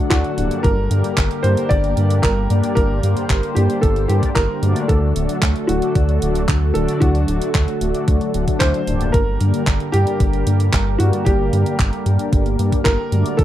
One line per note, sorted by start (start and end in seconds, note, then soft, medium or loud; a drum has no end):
0.00 0.32 D3 medium
0.00 4.85 D3 medium
0.00 0.60 F#3 medium
0.00 0.32 A3 medium
0.00 0.60 A3 medium
0.00 0.32 D4 medium
0.00 0.32 F#4 medium
0.00 0.60 A4 medium
0.00 0.32 D5 loud
0.00 0.61 F#5 medium
0.10 0.23 D2 medium
0.10 0.60 F#4 medium
0.10 kick loud
0.10 clap loud
0.10 closed hi-hat medium
0.24 closed hi-hat soft
0.38 0.50 D1 medium
0.38 0.71 G2 medium
0.38 0.71 A#3 medium
0.38 0.71 D4 medium
0.38 0.71 G4 medium
0.38 0.71 D5 loud
0.38 closed hi-hat medium
0.51 closed hi-hat soft
0.63 0.88 G1 loud
0.63 4.85 G3 medium
0.63 4.85 A#3 medium
0.63 4.85 G4 medium
0.63 1.13 A#4 medium
0.63 2.75 A#4 medium
0.63 kick loud
0.63 closed hi-hat medium
0.91 1.12 G2 medium
0.91 1.03 G2 medium
0.91 1.12 A#3 medium
0.91 1.12 D4 medium
0.91 1.12 G4 medium
0.91 1.12 D5 medium
0.91 closed hi-hat medium
1.04 closed hi-hat soft
1.17 1.29 G1 medium
1.17 kick loud
1.17 clap loud
1.17 closed hi-hat medium
1.31 closed hi-hat soft
1.43 1.94 G2 medium
1.43 1.56 G2 medium
1.43 1.94 A#3 medium
1.43 1.94 D4 medium
1.43 1.94 G4 medium
1.43 1.71 C5 medium
1.43 1.94 D5 medium
1.43 closed hi-hat medium
1.57 closed hi-hat soft
1.69 1.94 G1 medium
1.69 2.25 D5 loud
1.69 kick loud
1.69 closed hi-hat medium
1.84 closed hi-hat soft
1.97 2.18 G2 medium
1.97 2.21 G2 medium
1.97 2.18 A#3 medium
1.97 2.18 D4 medium
1.97 2.18 G4 medium
1.97 2.18 D5 medium
1.97 closed hi-hat medium
2.10 closed hi-hat soft
2.22 2.48 G1 loud
2.22 2.74 A#4 medium
2.22 kick loud
2.22 clap loud
2.22 closed hi-hat medium
2.50 3.00 G2 medium
2.50 2.62 G2 loud
2.50 3.00 A#3 medium
2.50 3.00 D4 medium
2.50 3.00 G4 medium
2.50 3.00 D5 loud
2.50 closed hi-hat medium
2.64 closed hi-hat soft
2.75 3.01 G1 loud
2.75 3.52 A#4 loud
2.75 4.87 C5 medium
2.75 kick loud
2.75 closed hi-hat medium
3.03 3.24 G2 medium
3.03 3.15 G2 medium
3.03 3.24 A#3 medium
3.03 3.24 D4 medium
3.03 3.24 G4 medium
3.03 closed hi-hat medium
3.17 closed hi-hat soft
3.30 3.42 G1 medium
3.30 kick loud
3.30 clap loud
3.30 closed hi-hat medium
3.43 closed hi-hat soft
3.55 4.06 G2 medium
3.55 3.68 G2 medium
3.55 4.06 A#3 medium
3.55 4.06 D4 medium
3.55 3.80 G4 medium
3.55 4.06 G4 medium
3.55 4.06 D5 medium
3.55 closed hi-hat medium
3.70 closed hi-hat soft
3.81 4.07 G1 loud
3.81 4.10 A4 medium
3.81 kick loud
3.81 closed hi-hat medium
3.96 closed hi-hat soft
4.08 4.30 G2 medium
4.08 4.21 G2 medium
4.08 4.30 A#3 medium
4.08 4.30 D4 medium
4.08 4.36 G4 medium
4.08 4.30 G4 medium
4.08 4.30 D5 medium
4.08 closed hi-hat medium
4.23 kick medium
4.23 closed hi-hat soft
4.35 4.48 G1 loud
4.35 4.90 A#4 medium
4.35 kick loud
4.35 clap loud
4.35 closed hi-hat medium
4.63 4.75 G2 medium
4.63 5.13 D3 loud
4.63 5.13 A3 medium
4.63 5.13 D4 medium
4.63 5.13 F#4 medium
4.63 5.13 D5 loud
4.63 closed hi-hat medium
4.76 closed hi-hat soft
4.88 5.13 D2 loud
4.88 9.10 D3 medium
4.88 9.10 F#3 medium
4.88 9.10 A3 medium
4.88 9.10 F#4 medium
4.88 5.38 A4 medium
4.88 9.10 A4 medium
4.88 kick loud
4.88 closed hi-hat medium
5.16 5.28 D1 medium
5.16 5.37 D3 medium
5.16 5.37 A3 medium
5.16 5.37 D4 medium
5.16 5.37 F#4 medium
5.16 5.37 D5 medium
5.16 closed hi-hat medium
5.29 closed hi-hat medium
5.42 5.54 D2 medium
5.42 kick loud
5.42 clap loud
5.42 closed hi-hat medium
5.56 closed hi-hat soft
5.67 5.81 D1 medium
5.67 6.19 D3 medium
5.67 6.19 A3 medium
5.67 6.19 D4 medium
5.67 6.78 F#4 medium
5.67 6.19 F#4 medium
5.67 6.19 D5 medium
5.67 closed hi-hat medium
5.82 closed hi-hat soft
5.95 6.19 D2 medium
5.95 kick loud
5.95 closed hi-hat medium
6.09 closed hi-hat soft
6.22 6.46 D1 medium
6.22 6.43 D3 medium
6.22 6.43 A3 medium
6.22 6.43 D4 medium
6.22 6.43 F#4 medium
6.22 6.43 D5 medium
6.22 closed hi-hat medium
6.35 closed hi-hat medium
6.49 6.72 D2 loud
6.49 kick loud
6.49 clap loud
6.49 closed hi-hat medium
6.74 6.87 D1 loud
6.74 7.25 D3 loud
6.74 7.25 A3 medium
6.74 7.25 D4 medium
6.74 7.25 F#4 medium
6.74 7.02 A4 medium
6.74 7.25 D5 loud
6.74 closed hi-hat medium
6.88 closed hi-hat medium
7.00 7.25 D2 loud
7.00 8.56 F#4 medium
7.00 kick loud
7.00 closed hi-hat medium
7.15 closed hi-hat soft
7.28 7.40 D1 medium
7.28 7.49 D3 medium
7.28 7.49 A3 medium
7.28 7.49 D4 medium
7.28 7.49 F#4 medium
7.28 7.49 D5 medium
7.28 closed hi-hat medium
7.42 closed hi-hat soft
7.55 7.67 D2 medium
7.55 kick loud
7.55 clap loud
7.55 closed hi-hat medium
7.68 closed hi-hat soft
7.81 7.93 D1 medium
7.81 8.31 D3 medium
7.81 8.31 A3 medium
7.81 8.31 D4 medium
7.81 8.31 F#4 medium
7.81 8.31 D5 medium
7.81 closed hi-hat medium
7.95 closed hi-hat soft
8.08 8.20 D2 medium
8.08 kick loud
8.08 closed hi-hat medium
8.21 closed hi-hat soft
8.34 8.46 D1 medium
8.34 8.44 D3 medium
8.34 8.44 A3 medium
8.34 8.44 D4 medium
8.34 8.44 F#4 medium
8.34 8.44 F#5 loud
8.34 closed hi-hat medium
8.47 8.81 D3 medium
8.47 8.81 A3 medium
8.47 8.81 D4 medium
8.47 8.81 F#4 medium
8.47 8.81 D5 loud
8.47 kick medium
8.47 closed hi-hat medium
8.59 8.73 D2 medium
8.59 9.09 C5 loud
8.59 kick loud
8.59 clap loud
8.59 closed hi-hat medium
8.74 closed hi-hat soft
8.87 9.11 D1 loud
8.87 9.21 G2 medium
8.87 9.21 A#3 medium
8.87 9.21 D4 medium
8.87 9.21 G4 medium
8.87 9.21 D5 loud
8.87 closed hi-hat medium
9.01 closed hi-hat medium
9.12 9.38 G1 loud
9.12 13.44 D3 medium
9.12 13.35 G3 medium
9.12 13.35 A#3 medium
9.12 13.35 G4 medium
9.12 9.62 A#4 medium
9.12 13.35 A#4 medium
9.12 kick loud
9.12 closed hi-hat medium
9.40 9.61 G2 medium
9.40 9.53 G2 medium
9.40 9.61 A#3 medium
9.40 9.61 D4 medium
9.40 9.61 G4 medium
9.40 9.61 D5 medium
9.40 closed hi-hat medium
9.54 closed hi-hat medium
9.67 9.79 G1 medium
9.67 kick loud
9.67 clap loud
9.67 closed hi-hat medium
9.80 closed hi-hat soft
9.92 10.44 G2 medium
9.92 10.06 G2 medium
9.92 10.44 A#3 medium
9.92 10.44 D4 medium
9.92 10.95 G4 loud
9.92 10.44 D5 medium
9.92 closed hi-hat medium
10.07 closed hi-hat soft
10.20 10.44 G1 loud
10.20 kick loud
10.20 closed hi-hat medium
10.33 closed hi-hat soft
10.47 10.68 G2 medium
10.47 10.71 G2 medium
10.47 10.68 A#3 medium
10.47 10.68 D4 medium
10.47 10.68 G4 medium
10.47 10.68 D5 medium
10.47 closed hi-hat medium
10.60 closed hi-hat medium
10.73 10.97 G1 loud
10.73 kick loud
10.73 clap loud
10.73 closed hi-hat medium
10.98 11.50 G2 medium
10.98 11.12 G2 loud
10.98 11.50 A#3 medium
10.98 11.50 D4 medium
10.98 11.27 F#4 medium
10.98 11.50 G4 medium
10.98 11.50 D5 loud
10.98 closed hi-hat medium
11.13 closed hi-hat medium
11.25 11.50 G1 medium
11.25 12.90 G4 medium
11.25 kick loud
11.25 closed hi-hat medium
11.53 11.74 G2 medium
11.53 11.65 G2 medium
11.53 11.74 A#3 medium
11.53 11.74 D4 medium
11.53 11.74 G4 medium
11.53 11.74 D5 medium
11.53 closed hi-hat medium
11.66 closed hi-hat soft
11.79 11.91 G1 medium
11.79 kick loud
11.79 clap loud
11.79 closed hi-hat medium
11.93 closed hi-hat soft
12.06 12.56 G2 medium
12.06 12.18 G2 medium
12.06 12.56 A#3 medium
12.06 12.56 D4 medium
12.06 12.56 G4 medium
12.06 12.56 D5 medium
12.06 closed hi-hat medium
12.19 closed hi-hat soft
12.33 12.56 G1 loud
12.33 kick loud
12.33 closed hi-hat medium
12.46 closed hi-hat soft
12.59 12.71 G2 medium
12.59 12.80 G2 medium
12.59 12.80 A#3 medium
12.59 12.80 D4 medium
12.59 12.80 G4 medium
12.59 12.80 D5 medium
12.59 closed hi-hat medium
12.72 kick medium
12.72 closed hi-hat soft
12.84 12.98 G1 loud
12.84 13.40 A#4 loud
12.84 kick loud
12.84 clap loud
12.84 closed hi-hat medium
13.12 13.24 G2 medium
13.12 13.44 D3 medium
13.12 13.44 A3 medium
13.12 13.44 D4 medium
13.12 13.44 F#4 medium
13.12 13.44 D5 loud
13.12 closed hi-hat medium
13.26 closed hi-hat soft
13.37 13.44 D2 loud
13.37 13.44 F#3 medium
13.37 13.44 A3 medium
13.37 13.44 F#4 medium
13.37 13.44 A4 medium
13.37 kick loud
13.37 closed hi-hat medium